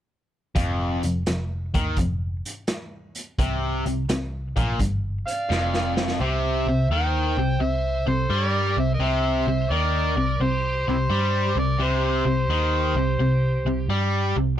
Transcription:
0.55 picked electric bass F1, overdriven electric guitar F2, kick, closed hi-hat
1.03 picked electric bass F1, overdriven electric guitar F2, closed hi-hat
1.26 picked electric bass F1, overdriven electric guitar F2, snare, closed hi-hat
1.74 picked electric bass D#2, overdriven electric guitar D#3, kick, closed hi-hat
1.96 picked electric bass F1, overdriven electric guitar F2, kick, closed hi-hat
2.45 closed hi-hat
2.67 snare, closed hi-hat
3.15 closed hi-hat
3.39 picked electric bass C2, overdriven electric guitar C3, kick, closed hi-hat
3.86 picked electric bass C2, overdriven electric guitar C3, closed hi-hat
4.09 picked electric bass C2, overdriven electric guitar C3, snare, closed hi-hat
4.57 picked electric bass A#1, overdriven electric guitar A#2, kick, closed hi-hat
4.79 picked electric bass G1, overdriven electric guitar G2, kick, closed hi-hat
5.26 lead electric guitar D5, harmonica F5, closed hi-hat
5.50 picked electric bass F1, overdriven electric guitar F2, snare
5.74 snare
5.97 snare
6.08 snare
6.20 picked electric bass C2, overdriven electric guitar C3, harmonica G4 C5 E5, lead electric guitar C5
6.66 picked electric bass C2, overdriven electric guitar C3
6.89 picked electric bass D#2, overdriven electric guitar D#3, lead electric guitar C5, harmonica G5
7.37 picked electric bass C2, overdriven electric guitar C3
7.60 picked electric bass C2, overdriven electric guitar C3, lead electric guitar C5, harmonica E5
8.07 picked electric bass C2, overdriven electric guitar C3, lead electric guitar A4, harmonica C5
8.30 picked electric bass G2, overdriven electric guitar G3, lead electric guitar A4, harmonica C#5
8.49 lead electric guitar A#4, harmonica D5
8.77 picked electric bass C2, overdriven electric guitar C3, lead electric guitar C5, harmonica E5
8.94 lead electric guitar A#4, harmonica D#5
8.99 picked electric bass C2, overdriven electric guitar C3, lead electric guitar C5
9.03 harmonica E5
9.47 picked electric bass C2, overdriven electric guitar C3
9.70 picked electric bass D#2, overdriven electric guitar D#3, lead electric guitar A#4, harmonica D5
10.17 picked electric bass C2, overdriven electric guitar C3
10.40 picked electric bass C2, overdriven electric guitar C3, lead electric guitar G4, harmonica C5
10.88 picked electric bass C2, overdriven electric guitar C3, harmonica E4 G4 C5, lead electric guitar G4
11.10 picked electric bass G2, overdriven electric guitar G3
11.55 picked electric bass C2, overdriven electric guitar C3, lead electric guitar A#4, harmonica D5
11.78 picked electric bass C2, overdriven electric guitar C3, lead electric guitar G4
11.83 harmonica C5
12.25 picked electric bass C2, overdriven electric guitar C3
12.48 picked electric bass D#2, overdriven electric guitar D#3
12.95 picked electric bass C2, overdriven electric guitar C3
13.19 picked electric bass C2, overdriven electric guitar C3
13.65 picked electric bass C2, overdriven electric guitar C3
13.88 picked electric bass G2, overdriven electric guitar G3
14.36 picked electric bass C2, overdriven electric guitar C3

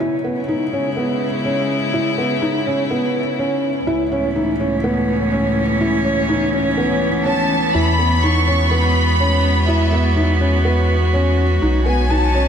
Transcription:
Already playing: string quartet C#4
0.00 string quartet C#3, felt piano E4
0.24 felt piano B3
0.40 string quartet E4
0.48 string quartet G#3, felt piano D#4
0.73 felt piano C#4
0.97 felt piano B3
1.45 felt piano C#4
1.93 felt piano E4
2.18 felt piano B3
2.42 felt piano D#4
2.66 felt piano C#4
2.91 felt piano B3
3.39 felt piano C#4
3.87 string quartet C#2, felt piano E4
4.08 string quartet B3 C#4, felt piano C#4
4.13 string quartet A2 E3
4.36 felt piano D#4
4.60 felt piano C#4
4.84 felt piano B3
5.32 felt piano C#4
5.81 felt piano E4
6.05 felt piano C#4
6.29 felt piano D#4
6.53 felt piano C#4
6.77 felt piano B3
7.26 felt piano C#4, violin section A5
7.74 sub bass E2, felt piano E4, violin section B5
7.99 felt piano B3
8.22 felt piano D#4, violin section C#6
8.33 string quartet G#3
8.47 felt piano C#4
8.56 string quartet F#4
8.70 felt piano B3, violin section B5
9.20 felt piano C#4
9.67 felt piano E4, violin section E5
9.92 felt piano B3
10.16 felt piano D#4
10.40 felt piano C#4
10.65 felt piano B3
11.13 felt piano C#4
11.62 sub bass B1, felt piano D#4
11.72 string quartet C#5
11.86 felt piano B3, violin section G#5
12.10 felt piano D#4, violin section A5
12.20 string quartet D#5
12.35 felt piano C#4

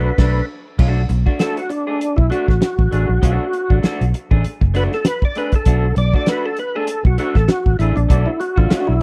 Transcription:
Already playing: clean electric guitar F#4, tonewheel organ B4
0.18 fingered electric bass B1, clean electric guitar A3 D4, kick, snare, crash
0.79 fingered electric bass B1, clean electric guitar A3 D4 F#4, kick, crash
1.09 fingered electric bass B1, muted clean electric guitar stroke, closed hi-hat
1.26 clean electric guitar A3 D4 F#4, kick
1.39 clean electric guitar A3 D4 F#4, tonewheel organ A4, snare, closed hi-hat
1.57 tonewheel organ F#4, closed hi-hat
1.70 tonewheel organ D4, muted clean electric guitar stroke, closed hi-hat
1.87 clean electric guitar A3 D4 G#4
2.01 closed hi-hat
2.16 fingered electric bass B1, tonewheel organ E4, muted clean electric guitar stroke, kick
2.30 clean electric guitar A3 D4 F#4, tonewheel organ F#4, closed hi-hat
2.48 fingered electric bass A1, muted clean electric guitar stroke, kick, snare
2.61 muted clean electric guitar stroke, snare, closed hi-hat
2.79 fingered electric bass A1, kick
2.91 fingered electric bass A1, clean electric guitar A3 D4 G#4, closed hi-hat
3.09 fingered electric bass A#1, muted clean electric guitar stroke
3.22 fingered electric bass B1, clean electric guitar A3 D4 F#4, kick, closed hi-hat
3.53 muted clean electric guitar stroke, closed hi-hat
3.70 fingered electric bass A1, clean electric guitar A3 D4 F#4, kick
3.83 clean electric guitar A3 D4 F#4, muted fingered electric bass stroke, snare, closed hi-hat
4.01 fingered electric bass B1, closed hi-hat
4.14 muted clean electric guitar stroke, closed hi-hat
4.31 fingered electric bass A1, clean electric guitar A3 D4 G#4, kick
4.44 muted fingered electric bass stroke, closed hi-hat
4.61 fingered electric bass F#1, muted clean electric guitar stroke, kick
4.74 clean electric guitar A3 D4 F#4, tonewheel organ B4, closed hi-hat
4.92 tonewheel organ A4, muted clean electric guitar stroke, snare
5.05 tonewheel organ B4, muted clean electric guitar stroke, snare, closed hi-hat
5.22 tonewheel organ D5, kick
5.35 clean electric guitar A3 D4 G#4, tonewheel organ B4, closed hi-hat
5.52 tonewheel organ A4, muted clean electric guitar stroke, kick, closed hi-hat
5.65 fingered electric bass B1, clean electric guitar A3 D4 F#4, kick, closed hi-hat
5.96 fingered electric bass B1, tonewheel organ D5, muted clean electric guitar stroke, closed hi-hat
6.14 clean electric guitar A3 D4 F#4, tonewheel organ D5, kick
6.26 clean electric guitar A3 D4 F#4, tonewheel organ B4, snare, closed hi-hat
6.46 tonewheel organ A4
6.57 tonewheel organ B4, muted clean electric guitar stroke, closed hi-hat
6.75 clean electric guitar A3 D4 G#4, tonewheel organ A4
6.87 closed hi-hat
7.05 fingered electric bass B1, tonewheel organ F#4, muted clean electric guitar stroke, kick
7.18 clean electric guitar A3 D4 F#4, tonewheel organ F#4, closed hi-hat
7.35 fingered electric bass A1, tonewheel organ A4, muted clean electric guitar stroke, kick, snare
7.48 tonewheel organ F#4, muted clean electric guitar stroke, snare, closed hi-hat
7.66 fingered electric bass A1, kick
7.79 fingered electric bass A1, clean electric guitar A3 D4 G#4, tonewheel organ E4, closed hi-hat
7.96 fingered electric bass A#1, tonewheel organ D4, muted clean electric guitar stroke, closed hi-hat
8.09 fingered electric bass B1, clean electric guitar A3 D4 F#4, kick, closed hi-hat
8.26 tonewheel organ E4
8.40 tonewheel organ F#4, muted clean electric guitar stroke, closed hi-hat
8.56 fingered electric bass A1, clean electric guitar A3 D4 F#4, tonewheel organ F4, kick
8.69 clean electric guitar A3 D4 F#4, tonewheel organ F#4, muted fingered electric bass stroke, snare, closed hi-hat
8.87 fingered electric bass B1, tonewheel organ E4

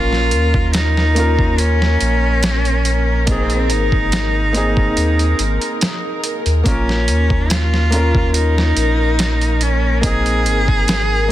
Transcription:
Already playing: sub bass A#1, felt piano A#3 C#4 F4 A#4, cello F4, string machine A#4
0.13 snare
0.31 sub bass D#2, closed hi-hat
0.54 kick
0.73 cello D#4, snare, closed hi-hat
0.97 snare
1.15 felt piano A#3 C#4 F4, closed hi-hat
1.19 felt piano A#4
1.39 kick
1.58 cello C#4, closed hi-hat
1.82 snare
2.01 sub bass A#1, closed hi-hat
2.43 snare, closed hi-hat
2.65 closed hi-hat
2.85 closed hi-hat
3.26 felt piano A#3 C4 D#4, cello C4, kick, closed hi-hat
3.31 felt piano G#4
3.50 closed hi-hat
3.70 sub bass G#1, cello D#4, closed hi-hat
3.92 kick
4.12 snare, closed hi-hat
4.53 felt piano A#3 C4 D#4, closed hi-hat
4.57 felt piano G#4
4.77 kick
4.97 sub bass D#2, closed hi-hat
5.19 closed hi-hat
5.39 sub bass G#1, closed hi-hat
5.61 closed hi-hat
5.81 snare, closed hi-hat
6.24 closed hi-hat
6.46 sub bass D#2, closed hi-hat
6.64 sub bass A#1, felt piano A#3 C#4 F4, cello C#4, string machine A#4, kick, closed hi-hat
6.68 felt piano A#4
6.89 snare
7.08 sub bass D#2, closed hi-hat
7.30 kick
7.50 cello F4, snare, closed hi-hat
7.74 snare
7.90 felt piano A#3 C#4 F4, closed hi-hat
7.95 felt piano A#4
8.15 kick
8.34 cello D#4, closed hi-hat
8.58 snare
8.77 sub bass A#1, closed hi-hat
9.19 snare, closed hi-hat
9.41 closed hi-hat
9.61 cello C#4, closed hi-hat
10.01 felt piano A#3 C4 D#4, cello G#4, kick, closed hi-hat
10.06 felt piano G#4
10.26 closed hi-hat
10.46 sub bass G#1, closed hi-hat
10.68 kick
10.88 snare, closed hi-hat
11.28 felt piano A#3

